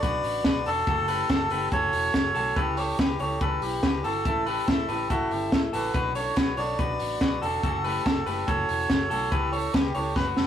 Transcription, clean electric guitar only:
0.03 F#4 B4
0.45 F#4 B4
0.66 F#4 A4
0.87 F#4 A4
1.08 G4 B4
1.30 F#4 A4
1.51 G4 B4
1.72 F#4 A4
2.35 F#4 A4
2.56 G4 B4
2.78 A4 C#5
2.99 G4 B4
3.20 A4 C#5
3.41 G4 B4
3.83 G4 B4
4.04 F#4 A4
4.25 E4 A4
4.46 G4 B4
4.68 E4 A4
4.89 G4 B4
5.10 E4 A4
5.73 F#4 A4
5.94 F#4 B4
6.15 A4 C#5
6.36 F#4 B4
6.57 A4 C#5
6.79 F#4 B4
7.21 F#4 B4
7.42 F#4 A4
7.64 F#4 A4
7.84 G4 B4
8.06 F#4 A4
8.26 G4 B4
8.47 F#4 A4
9.10 F#4 A4
9.32 G4 B4
9.52 A4 C#5
9.74 G4 B4
9.95 A4 C#5
10.16 F#4 B4

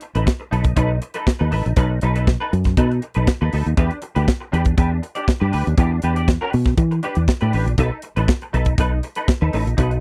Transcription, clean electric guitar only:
0.02 muted clean electric guitar stroke
0.15 D#4 A4 B4
0.26 muted clean electric guitar stroke
0.40 muted clean electric guitar stroke
0.51 D#4 A4 B4
0.65 muted clean electric guitar stroke
0.76 D#4 A4 B4
0.90 muted clean electric guitar stroke
1.02 muted clean electric guitar stroke
1.14 D#4 A4 B4
1.27 muted clean electric guitar stroke
1.39 D#4 A4 B4
1.51 D#4 A4 B4
1.64 muted clean electric guitar stroke
1.76 D#4 A4 B4
1.90 muted clean electric guitar stroke
2.02 D#4 A4 B4
2.15 D#4 A4 B4
2.27 muted clean electric guitar stroke
2.40 D#4 A4 B4
2.52 muted clean electric guitar stroke
2.66 muted clean electric guitar stroke
2.77 D#4 A4 B4
2.90 muted clean electric guitar stroke
3.02 muted clean electric guitar stroke
3.15 D#4 A4 B4
3.27 muted clean electric guitar stroke
3.41 D#4 A4 B4
3.53 D#4 A4 B4
3.66 muted clean electric guitar stroke
3.77 D4 G4 B4
3.91 muted clean electric guitar stroke
4.02 muted clean electric guitar stroke
4.15 D4 G4 B4
4.27 muted clean electric guitar stroke
4.40 muted clean electric guitar stroke
4.52 D4 G4 B4
4.66 muted clean electric guitar stroke
4.77 D4 G4 B4
4.91 muted clean electric guitar stroke
5.02 muted clean electric guitar stroke
5.15 D4 G4 D5
5.27 muted clean electric guitar stroke
5.40 D4 G4 B4
5.52 D4 G4 B4
5.66 muted clean electric guitar stroke
5.78 D4 G4 B4
5.91 muted clean electric guitar stroke
6.03 D4 G4 B4
6.16 D4 G4 D5
6.28 muted clean electric guitar stroke
6.41 D4 G4 B4
6.53 muted clean electric guitar stroke
6.66 muted clean electric guitar stroke
6.78 muted clean electric guitar stroke
6.91 muted clean electric guitar stroke
7.03 D4 G4 B4
7.16 muted clean electric guitar stroke
7.28 muted clean electric guitar stroke
7.41 D4 G4 B4
7.53 D4 G4 B4
7.66 muted clean electric guitar stroke
7.78 D#4 A4 B4
7.91 muted clean electric guitar stroke
8.03 muted clean electric guitar stroke
8.16 D#4 A4 B4
8.29 muted clean electric guitar stroke
8.42 muted clean electric guitar stroke
8.53 D#4 A4 B4
8.67 muted clean electric guitar stroke
8.78 D#4 A4 B4
8.92 muted clean electric guitar stroke
9.03 muted clean electric guitar stroke
9.16 D#4 A4 B4
9.28 muted clean electric guitar stroke
9.41 D#4 A4 B4
9.53 D#4 A4 B4
9.66 muted clean electric guitar stroke
9.77 D#4 A4 B4
9.91 muted clean electric guitar stroke

